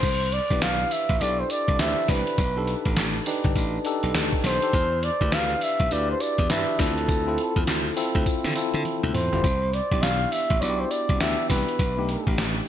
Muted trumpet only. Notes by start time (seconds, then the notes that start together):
Already playing: C5
0.33 D5
0.63 F5
0.92 E5
1.21 D5
1.40 C5
1.51 D5
1.80 E5
2.10 B4
4.46 C5
5.04 D5
5.34 F5
5.63 E5
5.93 D5
6.11 C5
6.22 D5
6.51 E5
6.80 A4
9.15 C5
9.74 D5
10.03 F5
10.32 E5
10.60 C#5 D5
10.80 C5
10.91 D5
11.21 E5
11.50 B4